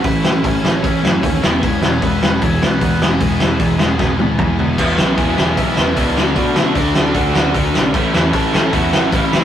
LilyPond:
<<
  \new Staff \with { instrumentName = "Lead electric guitar" } { \time 4/4 \key e \mixolydian \tempo 4 = 152 <e' e''>4 <cis' cis''>8 <cis' cis''>2 r8 | <cis' cis''>4 <b b'>4 <cis' cis''>8 <b b'>4 <gis gis'>8~ | <gis gis'>2.~ <gis gis'>8 r8 | r4 <gis' gis''>4 <e' e''>4 <d' d''>4 |
<d' d''>8 <e' e''>8 <d' d''>4 <fis' fis''>4 r4 | r4 <a' a''>4 <fis' fis''>4 <e' e''>4 | }
  \new Staff \with { instrumentName = "Distorted electric guitar" } { \time 4/4 \key e \mixolydian <a, e a cis' e'>8 <a, e a cis' e'>8 <a, e a cis' e'>8 <a, e a cis' e'>8 <a, e a cis' e'>8 <a, e a cis' e'>8 <a, e a cis' e'>8 <e gis b e'>8 | <e gis b e'>8 <e gis b e'>8 <e gis b e'>8 <e gis b e'>8 <e gis b e'>8 <e gis b e'>8 <e gis b e'>8 <e gis b e'>8 | <e gis b e'>8 <e gis b e'>8 <e gis b e'>8 <e gis b e'>8 <e gis b e'>8 <e gis b e'>8 <e gis b e'>8 <e gis b e'>8 | <e gis b e'>4. <e gis b e'>4. <e gis b e'>8 <d a d' fis'>8~ |
<d a d' fis'>4 <d a d' fis'>4. <d a d' fis'>4 r8 | <a, e a cis' e'>4. <a, e a cis' e'>4. <a, e a cis' e'>4 | }
  \new Staff \with { instrumentName = "Overdriven electric guitar" } { \time 4/4 \key e \mixolydian <a cis'>8 <a cis'>8 <a cis'>8 <a cis'>8 <a cis'>8 <a cis'>8 <a cis'>8 <e gis b>8 | <e gis>8 <e gis>8 <e gis>8 <e gis>8 <e gis>8 <e gis>8 <e gis>8 <e gis>8 | <e gis>8 <e gis>8 <e gis>8 <e gis>8 <e gis>8 <e gis>8 <e gis>8 <e gis>8 | <e gis b e'>8 <e gis b e'>8 <e gis b e'>8 <e gis b e'>8 <e gis b e'>8 <e gis b e'>8 <e gis b e'>8 <d a d' fis'>8 |
<d a d' fis'>8 <d a d' fis'>8 <d a d' fis'>8 <d a d' fis'>8 <d a d' fis'>8 <d a d' fis'>8 <d a d' fis'>8 <d a d' fis'>8 | <a, e a cis' e'>8 <a, e a cis' e'>8 <a, e a cis' e'>8 <a, e a cis' e'>8 <a, e a cis' e'>8 <a, e a cis' e'>8 <a, e a cis' e'>8 <a, e a cis' e'>8 | }
  \new Staff \with { instrumentName = "Overdriven electric guitar" } { \clef bass \time 4/4 \key e \mixolydian <a, e>8 <a, e>8 <a, e>8 <a, e>8 <a, e>8 <a, e>8 <a, e>8 <e, b, e>8 | <e, b,>8 <e, b,>8 <e, b,>8 <e, b,>8 <e, b,>8 <e, b,>8 <e, b,>8 <e, b,>8 | <e, b,>8 <e, b,>8 <e, b,>8 <e, b,>8 <e, b,>8 <e, b,>8 <e, b,>8 <e, b,>8 | <e, b, e>8 <e, b, e>8 <e, b, e>8 <e, b, e>8 <e, b, e>8 <e, b, e>8 <e, b, e>8 <d a d'>8 |
<d a d'>8 <d a d'>8 <d a d'>8 <d a d'>8 <d a d'>8 <d a d'>8 <d a d'>8 <d a d'>8 | <a, e a>8 <a, e a>8 <a, e a>8 <a, e a>8 <a, e a>8 <a, e a>8 <a, e a>8 <a, e a>8 | }
  \new Staff \with { instrumentName = "Picked electric bass" } { \clef bass \time 4/4 \key e \mixolydian a,,4 a,,8 a,,8 a,,8 fis,8 dis,8 e,,8 | e,,8 e,,8 e,,8 e,,8 e,,8 b,,8 e,8 e,,8 | e,,4 e,,8 e,,8 e,,8 d,8 e,4 | e,,8 b,,8 e,,8 e,,8 b,,8 e,,8 cis,8 d,8 |
b,4 d,8 d,8 d,8 d,8 d,8 b,,8 | a,,8 e,8 a,,8 a,,8 e,8 a,,8 a,,8 a,,8 | }
  \new DrumStaff \with { instrumentName = "Drums" } \drummode { \time 4/4 <hho bd>8 sn8 <hho bd>8 sn8 <hho bd>8 sn8 <hho bd>8 sn8 | <hho bd>8 sn8 <hho bd>8 sn8 <hho bd>8 sn8 <hho bd>8 sn8 | <hho bd>8 sn8 <hho bd>8 sn8 <bd sn>8 tommh8 <bd toml>8 tomfh8 | <cymc bd>8 sn8 <hho bd>8 sn8 <hho bd>8 sn8 <hho bd>8 sn8 |
<hho bd>8 sn8 <hho bd>8 sn8 <hho bd>8 sn8 <hho bd>8 sn8 | <hho bd>8 sn8 <hho bd>8 sn8 <hho bd>8 sn8 <hho bd>8 sn8 | }
>>